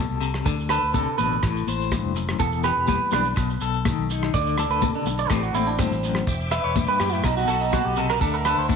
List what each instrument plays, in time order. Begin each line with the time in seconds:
Already playing: clean electric guitar B2 A4
0.09 fingered electric bass C2
0.21 clean electric guitar C3, closed hi-hat, muted conga, shekere
0.34 cross-stick
0.46 fingered electric bass D2, clean electric guitar D3, muted clean electric guitar stroke, kick, muted conga, shekere
0.59 shekere
0.69 clean electric guitar A4 B4, cross-stick, closed hi-hat, muted conga, shekere
0.83 fingered electric bass D2
0.93 clean electric guitar C3 A4, kick, high conga, shekere
1.18 fingered electric bass A1, clean electric guitar B2 B4, closed hi-hat, high conga, shekere
1.32 shekere
1.43 fingered electric bass A1, clean electric guitar A2, kick, cross-stick, shekere
1.56 shekere
1.67 fingered electric bass A1, clean electric guitar C5, closed hi-hat, high conga, shekere
1.81 shekere
1.91 clean electric guitar G2, kick, cross-stick, high conga, shekere
2.04 fingered electric bass F1
2.16 clean electric guitar F#2, closed hi-hat, muted conga, shekere
2.29 cross-stick
2.39 fingered electric bass E1, clean electric guitar E2 A4, kick, muted conga, shekere
2.52 shekere
2.64 clean electric guitar G4 B4, cross-stick, closed hi-hat, muted conga, shekere
2.77 fingered electric bass E1
2.87 clean electric guitar G3 B4, kick, high conga, shekere
3.11 fingered electric bass B1, clean electric guitar D4 B4, cross-stick, closed hi-hat, high conga, shekere
3.25 shekere
3.36 fingered electric bass B1, clean electric guitar B2, kick, cross-stick, shekere
3.50 shekere
3.61 fingered electric bass B1, clean electric guitar A4, closed hi-hat, shekere
3.74 shekere
3.85 clean electric guitar D#3, kick, cross-stick, high conga, shekere
3.98 fingered electric bass B1
4.09 clean electric guitar D#4, closed hi-hat, muted conga, shekere
4.23 cross-stick
4.34 fingered electric bass D2, clean electric guitar D3 D5, kick, muted conga, shekere
4.47 shekere
4.58 clean electric guitar A4, cross-stick, closed hi-hat, muted conga, shekere
4.69 fingered electric bass D2, clean electric guitar B4, shekere
4.82 clean electric guitar C3 A4, kick, high conga, shekere
4.95 clean electric guitar D4
5.05 fingered electric bass B1, muted clean electric guitar stroke, closed hi-hat, high conga, shekere
5.19 clean electric guitar D5, shekere
5.30 fingered electric bass A1, clean electric guitar A2 A3 C4 G4, kick, cross-stick, shekere
5.43 clean electric guitar F#4, shekere
5.54 fingered electric bass A1, clean electric guitar C4 E4, closed hi-hat, high conga, shekere
5.67 clean electric guitar D4, shekere
5.79 clean electric guitar G2 C4, kick, cross-stick, high conga, shekere
5.91 fingered electric bass A1, shekere
6.03 clean electric guitar F#2, closed hi-hat, muted conga, shekere
6.15 cross-stick, shekere
6.27 fingered electric bass E1, tonewheel organ E5 G5 D6, kick, muted conga, shekere
6.41 shekere
6.51 clean electric guitar B4 E5, cross-stick, closed hi-hat, muted conga, shekere
6.64 fingered electric bass E1, clean electric guitar C#5
6.76 clean electric guitar G2, muted clean electric guitar stroke, kick, high conga, shekere
6.88 clean electric guitar B4
7.00 fingered electric bass F#2, clean electric guitar A2 G4, cross-stick, closed hi-hat, high conga, shekere
7.13 clean electric guitar E4, shekere
7.24 fingered electric bass B1, clean electric guitar B2 D#4, tonewheel organ D#5 A5 B5, kick, cross-stick, muted conga, shekere
7.37 clean electric guitar F#4, shekere
7.48 fingered electric bass B1, clean electric guitar F#4 A4, closed hi-hat, shekere
7.61 clean electric guitar D#4, shekere
7.73 clean electric guitar B2 F#4, kick, cross-stick, high conga, shekere
7.85 fingered electric bass B1, clean electric guitar G4
7.96 clean electric guitar C3 A4, closed hi-hat, muted conga, shekere
8.10 clean electric guitar A#4, cross-stick
8.21 fingered electric bass D2, clean electric guitar D3 A4, tonewheel organ E5 F#5 D6, kick, muted conga, shekere
8.34 clean electric guitar A#4, shekere
8.45 clean electric guitar A4 B4, cross-stick, closed hi-hat, muted conga, shekere
8.57 fingered electric bass D2, clean electric guitar C5
8.69 clean electric guitar D4, muted clean electric guitar stroke, kick, high conga, shekere